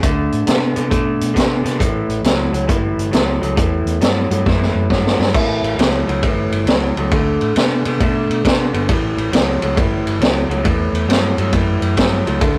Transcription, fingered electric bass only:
0.03 D2
0.33 A2
0.47 C3
0.76 C3
0.92 B2
1.21 B2
1.36 C3
1.65 C3
1.80 A1
2.09 A1
2.23 C#2
2.52 C#2
2.97 G1
3.12 C#2
3.42 C#2
3.58 E2
3.85 E2
4.01 G2
4.30 G2
4.46 F#2
4.74 F#2
4.90 G2
5.19 G2
5.34 A1
5.62 A1
5.77 C#2
6.08 C#2
6.23 G1
6.50 G1
6.65 C#2
6.96 C#2
7.12 D2
7.41 A2
7.56 C3
7.85 C3
8.01 B2
8.29 B2
8.44 C3
8.73 G1
8.89 A1
9.17 A1
9.32 C#2
9.62 C#2
9.78 G1
10.06 G1
10.19 C#2
10.48 C#2
10.65 E2
10.92 E2
11.08 G2
11.37 G2
11.53 F#2
11.81 F#2
11.97 G2
12.27 C#2
12.41 D2

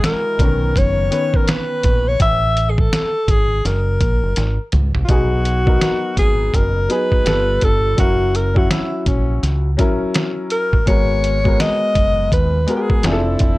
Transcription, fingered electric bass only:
0.39 B1
0.76 F#1
1.84 A#1
2.20 A1
3.28 G#1
3.65 F#1
4.01 A#1
4.23 F#1
4.37 G#1
4.74 C#2
4.96 C2
5.09 B1
6.17 G#1
6.54 F#1
7.26 G1
7.62 G1
7.98 F#1
9.06 A#1
9.43 C#2
10.73 A1
10.87 G#1
11.95 F#1
12.32 D#2
13.04 F1
13.40 F1

